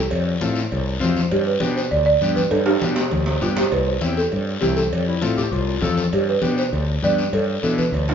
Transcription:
Already playing: A4
0.10 F2, cowbell, high conga, long guiro
0.26 high conga
0.41 A2 C4 F4 A4, high conga, short guiro
0.55 short guiro
0.71 C2, cowbell, long guiro
1.00 F2 C4 F4 C5, high conga, low conga, low timbale, short guiro
1.16 high conga, short guiro
1.31 G2 G4, cowbell, high conga, long guiro
1.46 B4, high conga
1.60 B2 B3 D4 G4, high conga, short guiro
1.76 C5, short guiro
1.91 D2 D5, cowbell, long guiro
2.06 D5
2.21 G2 B3 D4 G4, high conga, short guiro
2.36 B4, high conga, short guiro
2.51 G2 A4, cowbell, high timbale, long guiro
2.66 G4, high conga, high timbale
2.82 B2 B3 D4 G4, high conga, short guiro
2.96 low timbale, short guiro
3.11 D2, cowbell, high conga, long guiro
3.26 low timbale
3.41 G2 B3 D4 F4 G4, low conga, short guiro
3.57 G4, low conga, low timbale, short guiro
3.72 C2 B4, cowbell, high conga, long guiro
3.86 C5, high conga
4.01 E2 C4 E4 G4, high conga, short guiro
4.17 A4, short guiro
4.32 G2, cowbell, long guiro
4.61 C2 C4 E4 G4, high conga, low timbale, short guiro
4.76 A4, high conga, short guiro
4.93 F2, cowbell, high conga, long guiro
5.07 E4, high conga
5.21 A2 C4 F4 A4, high conga, short guiro
5.37 G4, low conga, short guiro
5.52 C2 F4, cowbell, long guiro
5.81 F2 C4 F4 A4, high conga, low conga, low timbale, short guiro
5.97 high conga, short guiro
6.13 G2 G4, cowbell, high conga, long guiro
6.27 B4, high conga
6.42 B2 B3 D4 G4, high conga, short guiro
6.58 C5, short guiro
6.73 D2, cowbell, long guiro
7.03 G2 B3 D4 G4 D5, high conga, short guiro
7.18 short guiro
7.33 G2 A4, cowbell, high conga, long guiro
7.48 high conga
7.63 B2 B3 D4 E4 A4, high conga, short guiro
7.78 B4, high conga, short guiro
7.92 D2, cowbell, long guiro
8.08 F4, low conga, high timbale

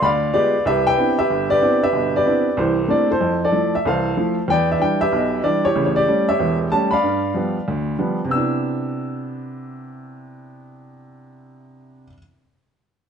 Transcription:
0.02 D2 D5 F5 B5
0.33 G#3 B3 F4 G4 B4 D5
0.65 C2 G4 B4 E5
0.87 B4 E5 G5
0.97 B3 C4 D4 E4
1.19 G4 B4 E5
1.30 G1
1.50 G4 B4 D5
1.61 B3 C4 D4 E4
1.83 G4 B4 E5
1.93 G1 B2
2.16 G4 B4 D5
2.26 B3 C4 D4 E4
2.57 C2 E3 E4 G4 C5
2.88 A3 A#3 C4 D4 E4 D5
3.11 E4 A4 C5
3.20 F2
3.45 A4 D5
3.52 F3 A3 E4
3.75 E5
3.85 C2 E3 A4 C5 F5
4.17 F3 A3 E4
4.48 E2 B4 D5 G5
4.72 E5
4.79 E3 G3 D4 G5
5.01 G4 B4 E5
5.12 B1 B2
5.43 E3 G3 D4 D5
5.65 E4 G4 C#5
5.76 A1 C#3
5.86 C#5
5.96 G4 D5
6.08 G3 A3 C#4
6.29 G4 C#5 E5
6.39 E1 E2
6.72 G3 A3 C#4 A5
6.91 D5 F5 B5
7.03 G2
7.34 F3 G3 B3
7.68 D2
7.99 F3 G3 B3
8.25 C3
8.29 B3 D4 E6
8.37 E4

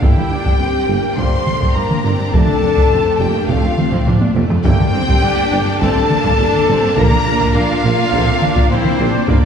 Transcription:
0.01 G1 G2 D3 A#3 D4 E4 G4 D5 G5, taiko
0.16 G2, taiko mid
0.30 G1 G2 D4
0.46 G2, taiko
0.59 G1 G2 C4
0.74 G2
0.88 G1 G2 A#3
1.03 G2
1.16 G1 G2 D3 G3 A#3 C5 C6, taiko
1.32 G2
1.47 A3, taiko mid
1.60 G2, taiko
1.73 G1 G2 A#3 A#4 A#5
1.90 taiko mid
2.03 G1 G2 C4
2.18 G2
2.32 F1 F2 D3 A3 D4 A4 A5, taiko
2.48 F2, taiko mid
2.61 F1 F2 D4
2.76 F2, taiko
2.90 F1 F2 C4
3.05 F2
3.19 F1 F2 A#3 G4 G5
3.34 F2
3.48 F1 F2 D3 A3 F4 F5, taiko
3.63 F2
3.78 C4, taiko mid
3.92 F2, taiko
4.06 F1 F2 D4, taiko low-mid
4.22 taiko high
4.35 F1 F2 A3, taiko high
4.50 F2, taiko low
4.63 G1 G2 D3 A3 A#3 D4 G4 A4 D5 G5, taiko
4.79 G2, taiko mid
4.94 G1 G2 C4
5.07 G2, taiko
5.22 G1 G2 D4
5.37 G2
5.51 G1 G2
5.66 G2
5.80 G1 G2 D3 A3 C4 A4 A5, taiko
5.95 G2
6.10 A#3, taiko mid
6.24 G2, taiko
6.38 G1 G2 D4
6.54 taiko mid
6.68 G1 G2 C4
6.82 G2
6.95 A#1 A#2 D3 A#3 A#4 A#5, taiko
7.11 A#2, taiko mid
7.25 A#1 A#2
7.39 A#2, taiko
7.53 A#1 A#2 D4 F4 F5
7.68 A#2
7.83 A#1 A#2 A#3
7.99 A#2
8.12 A#1 A#2 D3 A#3 C4, taiko
8.27 A#2
8.42 D4, taiko mid
8.56 A#2, taiko
8.68 A#1 A#2 C4 E4 C5
8.84 taiko mid
8.99 A#1 A#2 D4
9.13 A#2
9.27 G1 G2 D3 A#3 D4 A4 D5, taiko
9.42 G2

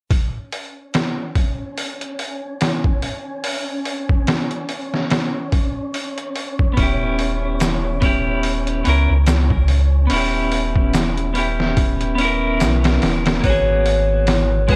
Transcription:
0.10 C#4 C#5, kick, open hi-hat
0.52 open hi-hat
0.94 snare, open hi-hat
1.36 kick, open hi-hat
1.78 open hi-hat
2.01 closed hi-hat
2.19 open hi-hat
2.61 snare, open hi-hat
2.84 kick
3.02 open hi-hat
3.44 open hi-hat
3.85 open hi-hat
4.09 kick
4.27 snare, open hi-hat
4.51 closed hi-hat
4.69 open hi-hat
4.94 snare
5.10 snare, open hi-hat
5.52 kick, open hi-hat
5.94 open hi-hat
6.18 closed hi-hat
6.36 open hi-hat
6.59 kick
6.74 B3 C#4, kick, open hi-hat
6.78 D#1 E4
6.83 G4
7.19 open hi-hat
7.60 snare, open hi-hat, shaker
8.01 B3 C#4 E4, kick, open hi-hat
8.05 G4
8.43 open hi-hat
8.67 closed hi-hat
8.84 C#2 B3 C#4 E4, open hi-hat
8.89 A#4
9.10 C#2
9.27 snare, open hi-hat, shaker
9.51 kick
9.68 open hi-hat
10.07 B3 C#4, open hi-hat
10.12 D#1 E4
10.16 G4
10.52 open hi-hat
10.76 kick
10.94 snare, open hi-hat, shaker
11.18 closed hi-hat
11.34 B3 C#4 E4, open hi-hat
11.38 G4
11.60 snare
11.77 kick, open hi-hat
12.01 closed hi-hat
12.15 B3 C#4, open hi-hat
12.21 E4 A#4
12.60 B1, snare, open hi-hat, shaker
12.84 snare, open hi-hat
13.02 D#1, snare, open hi-hat
13.26 snare, open hi-hat
13.40 G#1 A#3 B3, kick, open hi-hat
13.45 F#4 C#5
13.50 G#4
13.86 open hi-hat
14.27 snare, open hi-hat
14.68 G#3 B3 F#4 B4, kick, open hi-hat
14.72 G#4

